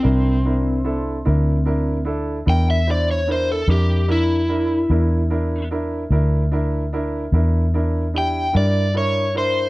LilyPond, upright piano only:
\new Staff \with { instrumentName = "Upright piano" } { \time 12/8 \key c \major \tempo 4. = 49 <d' e' bes'>8 <d' e' bes'>8 <d' e' a'>8 <d' e' bes'>8 <d' e' bes'>8 <d' e' a'>8 <d' e' bes'>8 <d' e' c''>8 <d' e' bes'>8 <d' e' bes'>8 <d' e' bes'>8 <d' e' bes'>8 | <d' e' bes'>8 <d' e' bes'>8 <d' e' bes'>8 <d' e' bes'>8 <d' e' bes'>8 <d' e' bes'>8 <d' e' bes'>8 <d' e' bes'>8 <d' e' g'>8 <d' e' bes'>8 <d' e' bes'>8 <d' e' bes'>8 | }